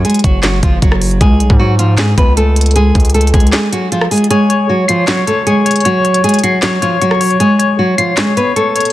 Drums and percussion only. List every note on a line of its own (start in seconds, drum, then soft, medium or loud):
0.05 closed hi-hat medium
0.10 closed hi-hat medium
0.14 closed hi-hat soft
0.19 closed hi-hat soft
0.24 kick loud
0.24 closed hi-hat medium
0.43 snare loud
0.43 clap medium
0.43 closed hi-hat medium
0.63 kick medium
0.63 closed hi-hat medium
0.82 kick medium
0.82 closed hi-hat medium
0.92 cross-stick loud
1.02 closed hi-hat medium
1.02 open hi-hat medium
1.11 closed hi-hat soft
1.21 kick loud
1.21 closed hi-hat medium
1.40 closed hi-hat medium
1.50 kick medium
1.79 closed hi-hat medium
1.98 snare loud
1.98 clap medium
1.98 closed hi-hat medium
2.18 kick loud
2.18 closed hi-hat medium
2.37 closed hi-hat medium
2.56 closed hi-hat medium
2.61 closed hi-hat medium
2.66 closed hi-hat medium
2.71 closed hi-hat soft
2.76 closed hi-hat medium
2.95 kick medium
2.95 closed hi-hat soft
3.00 closed hi-hat soft
3.05 closed hi-hat medium
3.10 closed hi-hat medium
3.14 closed hi-hat medium
3.21 closed hi-hat medium
3.27 closed hi-hat medium
3.34 kick medium
3.34 closed hi-hat medium
3.40 closed hi-hat medium
3.47 closed hi-hat medium
3.53 snare loud
3.53 clap medium
3.53 closed hi-hat medium
3.73 closed hi-hat medium
3.92 closed hi-hat medium
4.01 cross-stick loud
4.11 closed hi-hat soft
4.11 open hi-hat medium
4.18 closed hi-hat medium
4.24 closed hi-hat medium
4.31 closed hi-hat medium
4.50 closed hi-hat medium
4.89 closed hi-hat medium
5.08 snare loud
5.08 clap medium
5.08 closed hi-hat medium
5.27 closed hi-hat medium
5.47 closed hi-hat medium
5.66 closed hi-hat medium
5.71 closed hi-hat medium
5.76 closed hi-hat medium
5.80 closed hi-hat soft
5.85 closed hi-hat medium
6.05 closed hi-hat soft
6.14 closed hi-hat medium
6.24 closed hi-hat medium
6.29 closed hi-hat medium
6.34 closed hi-hat medium
6.39 closed hi-hat soft
6.44 closed hi-hat medium
6.62 snare loud
6.62 clap medium
6.62 closed hi-hat medium
6.82 closed hi-hat medium
7.02 closed hi-hat medium
7.11 cross-stick loud
7.21 closed hi-hat medium
7.21 open hi-hat medium
7.31 closed hi-hat soft
7.40 closed hi-hat medium
7.60 closed hi-hat medium
7.98 closed hi-hat medium
8.17 snare loud
8.17 clap medium
8.17 closed hi-hat medium
8.37 closed hi-hat medium
8.56 closed hi-hat medium
8.76 closed hi-hat medium
8.80 closed hi-hat medium
8.85 closed hi-hat medium